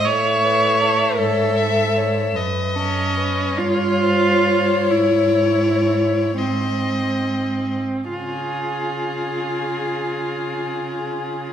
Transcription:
0.05 1.19 A2 medium
0.05 1.19 C#5 medium
0.05 0.46 C#5 medium
0.05 1.18 E5 medium
0.44 0.83 B4 medium
0.81 1.18 A4 medium
1.17 2.35 G#2 medium
1.17 2.35 A4 medium
1.17 1.59 C#5 medium
1.17 2.37 E5 medium
1.57 1.99 E5 medium
1.97 2.37 C#5 medium
2.35 3.56 F#2 medium
2.35 2.77 B4 medium
2.35 3.60 D#5 medium
2.75 3.59 C#4 medium
2.75 3.19 A4 medium
3.17 3.61 B4 medium
3.58 4.92 G2 medium
3.58 4.92 F4 medium
3.58 4.03 C#5 medium
3.58 6.38 C#5 medium
4.01 4.44 C5 medium
4.45 4.93 C5 medium
4.91 6.38 G#2 medium
4.91 6.38 E4 medium
4.91 6.39 C#5 medium
6.38 7.77 G#2 soft
6.38 8.07 C4 medium
6.38 7.20 C5 soft
6.38 7.79 D#5 soft
8.09 11.53 C#3 soft
8.09 11.53 F4 soft
8.09 11.53 G#4 soft

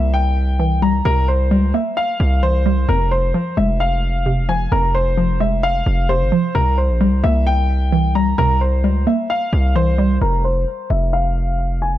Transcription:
0.00 1.01 C2 loud
0.00 0.37 C3 medium
0.00 0.81 G3 loud
0.00 1.05 A#3 medium
0.00 0.11 E5 medium
0.14 0.78 G5 medium
0.59 1.74 E3 medium
0.82 1.50 G3 medium
0.82 1.03 A#5 medium
1.05 1.53 C2 loud
1.05 2.20 C3 loud
1.05 1.26 A#4 loud
1.28 1.71 C5 medium
1.51 1.73 C#2 loud
1.51 2.65 G3 loud
1.74 2.89 A#3 medium
1.74 1.95 E5 medium
1.97 2.40 F5 medium
2.20 2.86 C2 loud
2.43 2.89 E3 medium
2.43 2.86 C5 medium
2.66 2.89 G3 medium
2.89 3.33 F1 loud
2.89 4.03 F2 medium
2.89 3.09 A#4 medium
3.11 3.55 C5 medium
3.34 4.48 F3 loud
3.57 4.68 F1 loud
3.57 4.72 G#3 medium
3.57 3.78 E5 medium
3.80 4.45 F5 medium
4.26 5.40 C3 medium
4.49 5.16 F3 medium
4.49 4.69 G#5 medium
4.72 5.82 F1 loud
4.72 5.86 F2 medium
4.72 4.92 A#4 medium
4.95 5.38 C5 medium
5.17 6.31 F3 medium
5.40 6.55 G#3 medium
5.40 5.61 E5 medium
5.63 6.06 F5 loud
5.86 6.22 F1 loud
6.09 6.54 C3 medium
6.09 6.52 C5 medium
6.21 6.32 G1 loud
6.32 6.55 F3 medium
6.55 6.91 C2 loud
6.55 7.69 C3 medium
6.55 6.75 A#4 loud
6.78 7.21 C5 medium
6.89 7.08 A#1 loud
7.01 8.14 G3 medium
7.07 7.23 C2 loud
7.24 8.34 C2 loud
7.24 8.38 A#3 medium
7.24 7.44 E5 medium
7.47 8.11 G5 medium
7.92 9.07 E3 medium
8.15 8.83 G3 medium
8.15 8.36 A#5 medium
8.38 8.85 C2 loud
8.38 9.53 C3 medium
8.38 8.59 A#4 loud
8.61 9.04 C5 medium
8.84 9.06 C#2 loud
8.84 9.97 G3 medium
9.07 10.21 A#3 medium
9.07 9.27 E5 medium
9.30 9.73 F5 medium
9.53 10.19 C2 loud
9.76 10.21 E3 medium
9.76 10.19 C5 medium
9.98 10.21 G3 medium
10.21 10.65 F1 loud
10.21 10.42 A#4 medium
10.44 10.87 C5 medium
10.90 11.98 F1 loud
10.90 11.11 E5 medium
11.13 11.78 F5 medium
11.82 11.98 G#5 medium

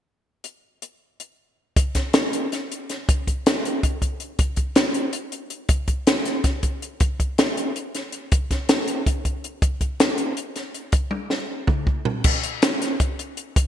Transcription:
0.44 closed hi-hat medium
0.82 closed hi-hat medium
1.20 closed hi-hat soft
1.76 kick loud
1.76 closed hi-hat medium
1.95 kick medium
1.95 snare soft
1.95 closed hi-hat medium
2.13 snare loud
2.13 closed hi-hat medium
2.33 closed hi-hat medium
2.52 snare soft
2.52 closed hi-hat medium
2.72 closed hi-hat medium
2.90 snare soft
2.90 closed hi-hat medium
3.09 kick loud
3.09 closed hi-hat medium
3.27 kick medium
3.27 closed hi-hat medium
3.46 snare loud
3.46 closed hi-hat medium
3.65 closed hi-hat medium
3.83 kick medium
3.83 closed hi-hat medium
4.02 kick medium
4.02 closed hi-hat medium
4.20 closed hi-hat medium
4.39 kick loud
4.39 closed hi-hat medium
4.56 kick medium
4.56 closed hi-hat soft
4.76 snare loud
4.76 closed hi-hat medium
4.94 closed hi-hat medium
5.13 closed hi-hat medium
5.32 closed hi-hat medium
5.50 closed hi-hat medium
5.69 kick loud
5.69 closed hi-hat medium
5.88 kick medium
5.88 closed hi-hat medium
6.07 snare loud
6.07 closed hi-hat medium
6.25 snare soft
6.25 closed hi-hat medium
6.44 kick medium
6.44 snare soft
6.44 closed hi-hat medium
6.63 kick medium
6.63 closed hi-hat medium
6.82 closed hi-hat medium
7.00 kick loud
7.00 closed hi-hat medium
7.20 kick medium
7.20 closed hi-hat medium
7.38 snare loud
7.38 closed hi-hat medium
7.57 closed hi-hat medium
7.76 closed hi-hat medium
7.95 snare soft
7.95 closed hi-hat medium
8.12 closed hi-hat medium
8.32 kick loud
8.32 closed hi-hat medium
8.51 kick medium
8.51 snare soft
8.51 closed hi-hat medium
8.69 snare loud
8.69 closed hi-hat medium
8.88 closed hi-hat medium
9.06 kick medium
9.06 closed hi-hat medium
9.25 kick medium
9.25 closed hi-hat medium
9.44 closed hi-hat medium
9.62 kick loud
9.62 closed hi-hat medium
9.81 kick medium
9.81 closed hi-hat medium
10.00 snare loud
10.00 closed hi-hat medium
10.18 closed hi-hat medium
10.37 closed hi-hat medium
10.56 snare soft
10.56 closed hi-hat medium
10.74 closed hi-hat medium
10.92 kick loud
10.92 closed hi-hat medium
11.11 high tom soft
11.30 snare medium
11.67 kick medium
11.67 mid tom medium
11.87 kick medium
12.05 floor tom medium
12.24 kick loud
12.24 crash loud
12.43 closed hi-hat medium
12.62 snare loud
12.62 closed hi-hat loud
12.82 snare soft
12.82 closed hi-hat medium
13.00 kick medium
13.00 closed hi-hat medium
13.19 closed hi-hat medium
13.37 closed hi-hat medium
13.56 kick loud
13.56 closed hi-hat medium

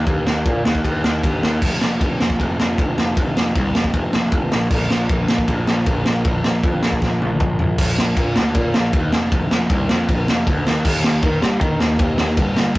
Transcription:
0.07 0.23 D#2 loud
0.07 kick loud
0.07 ride medium
0.26 0.43 D#2 medium
0.26 snare loud
0.46 0.62 A#2 medium
0.46 kick loud
0.46 ride medium
0.65 0.81 D#2 medium
0.65 snare loud
0.75 kick medium
0.85 1.01 D#2 loud
0.85 kick medium
0.85 ride medium
1.04 1.20 D#2 medium
1.04 snare loud
1.23 1.40 D#2 medium
1.23 kick loud
1.23 ride medium
1.43 1.59 D#2 medium
1.43 snare loud
1.62 1.78 F1 loud
1.62 kick loud
1.62 crash loud
1.81 1.98 F1 medium
1.81 snare loud
2.01 2.17 F1 medium
2.01 kick loud
2.01 ride medium
2.20 2.36 F1 medium
2.20 snare loud
2.30 kick medium
2.40 2.56 F1 loud
2.40 kick loud
2.40 ride medium
2.59 2.75 F1 loud
2.59 snare loud
2.78 2.94 F1 medium
2.78 kick loud
2.78 ride medium
2.98 3.14 F1 medium
2.98 snare loud
3.17 3.33 F1 medium
3.17 kick loud
3.17 ride medium
3.36 3.52 F1 medium
3.36 snare loud
3.55 3.72 C2 medium
3.55 kick loud
3.55 ride medium
3.75 3.91 F1 medium
3.75 snare loud
3.84 kick medium
3.94 4.10 F1 loud
3.94 kick medium
3.94 ride medium
4.13 4.30 F1 loud
4.13 snare loud
4.32 4.48 F1 medium
4.32 kick loud
4.32 ride medium
4.52 4.68 A#1 loud
4.52 snare loud
4.71 4.87 A#1 loud
4.71 kick loud
4.71 crash loud
4.90 5.07 A#1 medium
4.90 snare loud
5.09 5.26 A#1 medium
5.09 kick loud
5.09 ride medium
5.28 5.45 A#1 medium
5.28 snare loud
5.38 kick medium
5.48 5.64 A#1 loud
5.48 kick medium
5.48 ride medium
5.67 5.84 A#1 loud
5.67 snare loud
5.86 6.03 A#1 loud
5.86 kick loud
5.86 ride medium
6.06 6.22 A#1 medium
6.06 snare loud
6.25 6.41 A#1 medium
6.25 kick loud
6.25 ride medium
6.44 6.61 A#1 medium
6.44 snare loud
6.63 6.80 F2 medium
6.63 kick loud
6.63 ride medium
6.83 6.99 A#1 medium
6.83 snare loud
6.92 kick medium
7.02 7.18 A#1 loud
7.02 kick loud
7.02 snare medium
7.21 7.37 A#1 loud
7.21 high tom medium
7.40 7.56 A#1 medium
7.40 kick loud
7.40 mid tom medium
7.59 7.76 A#1 medium
7.59 floor tom medium
7.78 8.15 A#1 loud
7.78 kick loud
7.78 crash loud
7.98 snare loud
8.17 8.35 A#2 medium
8.17 kick loud
8.17 ride medium
8.36 8.54 D2 medium
8.36 snare loud
8.55 8.73 A#2 loud
8.55 kick loud
8.55 ride medium
8.74 8.93 A#1 loud
8.74 snare loud
8.93 9.12 D#2 loud
8.93 kick loud
8.93 ride medium
9.13 9.31 F1 loud
9.13 snare loud
9.32 9.50 F1 medium
9.32 kick loud
9.32 ride medium
9.51 9.69 F1 medium
9.51 snare loud
9.70 9.88 C2 medium
9.70 kick loud
9.70 ride medium
9.89 10.08 F2 loud
9.89 snare loud
10.09 10.27 A#1 medium
10.09 kick loud
10.09 ride medium
10.28 10.46 F1 loud
10.28 snare loud
10.47 10.65 D2 loud
10.47 kick loud
10.47 ride medium
10.67 10.84 D#2 medium
10.67 snare loud
10.85 11.21 D#2 loud
10.85 kick loud
10.85 crash loud
11.04 snare loud
11.23 11.41 D#3 medium
11.23 kick loud
11.23 ride medium
11.42 11.60 G2 medium
11.42 snare loud
11.61 11.79 D#3 loud
11.61 kick loud
11.61 ride medium
11.80 11.98 D#2 loud
11.80 snare loud
11.99 12.17 D#2 loud
11.99 kick loud
11.99 ride medium
12.18 12.37 D#2 medium
12.18 snare loud
12.37 12.56 G1 loud
12.37 kick loud
12.37 ride medium
12.56 12.75 G1 medium
12.56 snare loud
12.75 ride medium

